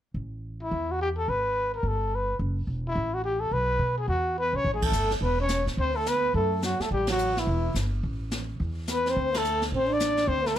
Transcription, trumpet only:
0.63 0.93 E4 medium
0.91 1.01 F#4 medium
1.02 1.09 G4 medium
1.18 1.31 A4 medium
1.29 1.74 B4 medium
1.75 1.89 A#4 medium
1.88 2.17 A4 medium
2.15 2.36 B4 medium
2.87 3.15 E4 medium
3.14 3.24 F#4 medium
3.25 3.42 G4 medium
3.40 3.54 A4 medium
3.53 3.98 B4 loud
3.98 4.08 G#4 medium
4.08 4.35 F#4 medium
4.39 4.58 B4 medium
4.56 4.74 C#5 medium
4.74 4.86 G#4 medium
4.85 5.12 A4 medium
5.23 5.39 B4 medium
5.41 5.66 C#5 medium
5.79 5.98 C5 loud
5.96 6.10 A4 medium
6.08 6.34 B4 medium
6.35 6.61 A4 medium
6.65 6.83 F#4 medium
6.82 6.91 A4 medium
6.92 7.08 G4 medium
7.11 7.41 F#4 medium
7.39 7.77 E4 medium
8.92 9.12 B4 medium
9.10 9.39 C5 medium
9.38 9.64 A4 medium
9.77 9.95 C5 medium
9.93 10.30 D5 loud
10.28 10.49 C5 medium
10.47 10.58 A4 medium

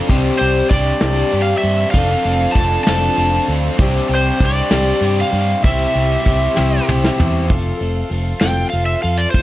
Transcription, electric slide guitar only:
0.39 0.69 C5 medium
0.70 1.50 D5 medium
1.42 1.57 F5 medium
1.58 1.90 E5 medium
1.90 2.56 F5 loud
2.52 2.83 A5 loud
2.84 3.51 A5 medium
4.15 4.45 C5 medium
4.45 5.23 D5 medium
5.21 5.64 F5 loud
5.65 6.84 E5 loud
8.41 8.70 G5 medium
8.70 8.86 F5 medium
8.86 9.02 E5 medium
9.03 9.19 F5 medium
9.18 9.31 D5 medium
9.31 9.42 C5 medium

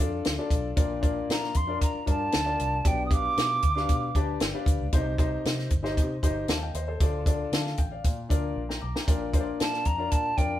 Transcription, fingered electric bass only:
0.00 0.21 F2 medium
0.26 0.37 D2 medium
0.51 0.72 B1 medium
0.77 1.20 A#1 medium
1.29 1.50 A#2 medium
1.55 1.77 F2 medium
1.95 muted fingered electric bass stroke soft
2.07 2.29 G2 medium
2.34 2.55 D2 medium
2.60 2.81 C2 medium
2.85 3.28 B1 loud
3.37 3.59 B2 medium
3.63 3.85 D2 medium
3.90 4.11 B2 loud
4.15 4.36 D2 medium
4.41 4.52 G1 medium
4.66 4.77 D2 medium
4.80 4.91 C#2 medium
4.93 5.36 C2 loud
5.45 5.66 C3 medium
5.71 5.99 G1 medium
5.97 6.19 C3 loud
6.23 6.44 G1 medium
6.48 6.70 D#2 medium
6.74 6.96 D#2 medium
7.01 7.43 D2 medium
7.52 7.74 D3 medium
7.79 8.00 A1 medium
8.05 8.26 A#2 loud
8.30 8.52 D2 medium
8.56 8.78 A#1 medium
8.82 8.93 B1 medium
9.08 9.51 A#1 medium
9.61 9.82 A#2 medium
9.86 10.07 F2 medium
10.12 10.34 A#2 medium
10.38 10.59 F2 medium

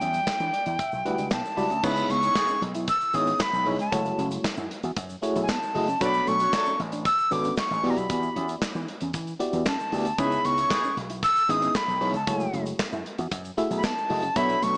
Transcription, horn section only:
1.83 2.04 B3 loud
1.83 2.04 E4 loud
1.83 2.04 G#4 loud
1.83 2.04 E5 loud
2.23 2.33 G#3 medium
2.23 2.33 C#4 medium
2.23 2.33 E4 medium
2.23 2.33 C#5 medium
2.35 2.57 E3 loud
2.35 2.57 G#3 loud
2.35 2.56 D#4 loud
2.35 2.57 G#4 loud
6.01 6.22 A3 loud
6.01 6.22 D4 loud
6.01 6.22 F#4 loud
6.01 6.22 D5 loud
6.40 6.50 A3 medium
6.40 6.50 C#4 medium
6.40 6.50 F#4 medium
6.40 6.50 C#5 loud
6.53 6.74 F#3 loud
6.53 6.74 A3 loud
6.53 6.74 D4 loud
6.53 6.74 A4 loud
10.18 10.39 B3 loud
10.18 10.39 E4 loud
10.18 10.39 G#4 loud
10.18 10.39 E5 loud
10.58 10.68 G#3 medium
10.58 10.68 C#4 medium
10.58 10.68 E4 medium
10.58 10.68 C#5 loud
10.71 10.92 E3 loud
10.71 10.92 G#3 loud
10.71 10.92 D#4 loud
10.71 10.92 G#4 loud
14.36 14.57 E4 loud
14.36 14.57 C#5 loud
14.36 14.57 E5 loud

